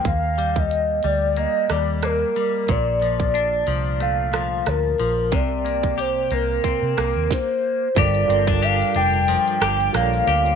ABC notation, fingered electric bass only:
X:1
M:4/4
L:1/16
Q:"Swing 16ths" 1/4=91
K:Gm
V:1 name="Fingered electric bass" clef=bass
E,,6 D,,3 z E,,4 z2 | B,,,6 C,,6 D,,2 B,,,2 | C,,6 C,,2 z C, C,, E,, z4 | G,,,2 G,,,4 F,,,3 z G,,,2 B,,,2 D,,2 |]